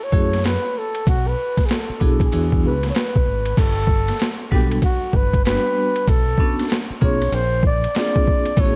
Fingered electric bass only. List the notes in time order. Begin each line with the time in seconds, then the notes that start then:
0.12 F#2
1.07 B1
1.90 muted fingered electric bass stroke
2.01 B1
2.34 E2
2.64 C#2
3.16 B1
3.28 G#1
3.57 G1
4.52 B1
5.14 G1
6.07 B1
6.90 muted fingered electric bass stroke
7.02 B1
7.32 A#1
8.57 A1